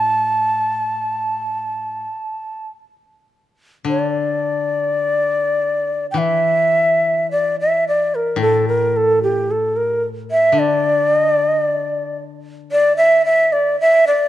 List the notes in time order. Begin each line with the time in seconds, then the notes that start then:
Already playing: A2 A5
3.85 D3
3.89 D5
6.11 E3 G5
6.18 E5
7.31 D5
7.60 E5
7.88 D5
8.15 A#4
8.36 A2
8.41 A4
8.68 A#4
8.96 A4
9.23 G4
9.51 A4
9.76 A#4
10.31 E5
10.52 D3
10.59 D5
11.16 D#5
11.31 D5
11.47 D#5
11.63 D5
12.72 D5
12.97 E5
13.25 E5
13.52 D5
13.81 E5
14.07 D5